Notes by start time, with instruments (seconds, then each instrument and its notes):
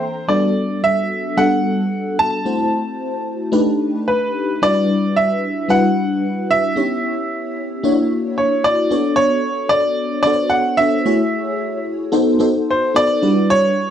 Already playing: fm electric piano E3 A#3 C4 D4 A4 E5 G5 A#5, grand piano C5
0.03 fm electric piano C6
0.28 fm electric piano G3 B3 D4 F#4 A4, grand piano D5
0.84 grand piano E5
1.37 fm electric piano G3 B3 D4 F#4 A4, grand piano F#5
2.19 grand piano A5
2.45 fm electric piano A3 C4 E4 F#4 C5
3.52 fm electric piano A3 D4 D#4 G4 B4
4.08 grand piano B4
4.62 fm electric piano G3 D4 E4 F#4 B4, grand piano D5
5.16 grand piano E5
5.68 fm electric piano G3 D4 E4 F#4 B4, grand piano F#5
6.51 grand piano E5
6.75 fm electric piano B3 C#4 D#4 G4 C#5
6.83 fm electric piano E4
7.83 fm electric piano A#3 D4 E4 F#4 C#5
8.38 grand piano C#5
8.64 grand piano D5
8.90 fm electric piano B3 D4 F#4 A4 C#5
9.16 grand piano C#5
9.69 grand piano D5
10.23 fm electric piano B3 D4 F#4 A4 C5, grand piano D5
10.33 fm electric piano C#5
10.50 grand piano F#5
10.77 fm electric piano B3 D4 F#4 A4 C#5, grand piano E5
11.05 fm electric piano A3 E4 F#4 G#4 C#5
12.12 fm electric piano B3 D#4 F#4 A4 C5
12.39 fm electric piano B3 D#4 F#4 A4 C5
12.71 grand piano C5
12.94 fm electric piano B3 D#4 F#4 A4 B4, grand piano D5
13.22 fm electric piano G3 D4 E4 F#4 B4
13.50 grand piano C#5